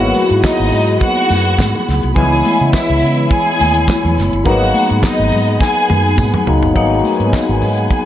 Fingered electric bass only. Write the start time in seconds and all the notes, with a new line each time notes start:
Already playing: G#1
0.31 G#2
0.60 G#1
0.73 G#2
1.30 F#2
1.59 G#2
1.89 C#2
2.04 C2
2.17 C#2
2.61 C#3
2.90 C#2
3.03 C#3
3.61 D#2
4.05 E2
4.18 F#1
4.33 G1
4.46 G#1
4.91 G#2
5.20 G#1
5.32 G#2
5.90 F#2
6.18 G#2
6.48 C#2
6.63 G1
6.76 G#1
7.20 G#2
7.49 G#1
7.62 G#2